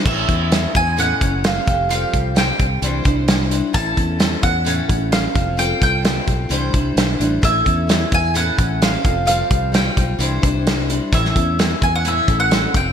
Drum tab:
CC |x---------------|----------------|----------------|----------------|
HH |--x-x-x-x-x-x-x-|x-x-x-x-x-x-x-x-|x-x-x-x-x-x-x-x-|x-x-x-x-x-x-x-x-|
SD |----o-------o---|----o-------o---|----o-------o---|----o-------o---|
BD |o-o---o---o---o-|--o---o---o-----|o-o---o---o---o-|--o---o---o-----|

CC |----------------|----------------|----------------|
HH |x-x-x-x-x-x-x-x-|x-x-x-x-x-x-x-x-|x-x-x-x-x-x-x-x-|
SD |----o-------o---|----o-------o---|-o--o-------o---|
BD |o-o---o---o---o-|--o---o---o-----|o-o---o---o---o-|